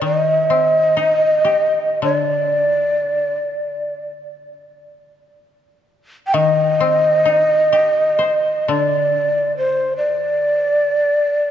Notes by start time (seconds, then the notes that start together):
0.01 D#3 D#5
0.50 C4
0.97 D#4
1.45 G4
2.02 D3 D5
6.27 G5
6.34 D#3 D#5
6.80 C4
7.25 D#4
7.73 G4
8.19 C5
8.68 D3 D5
9.58 C5
9.97 D5